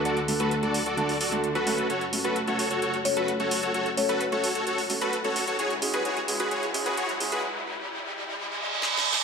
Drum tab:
HH |x--x--o--x--x--x--o--x--x--o--o--x--x--x--o--x--|x--x--o--x--x--x--o--x--x--x--o--x--x--x--o--x--|x--x--o--x--x--x--o--x--x--o--o--x--x--x--o--x--|x--x--o--x--x--x--o--x--x--x--o--x--x--x--o--x--|
SD |------------------------------------------------|------------------------------------------------|------------------------------------------------|------------------------------------------------|

HH |------------------------------------------------|
SD |------------------------------------o---o---o---|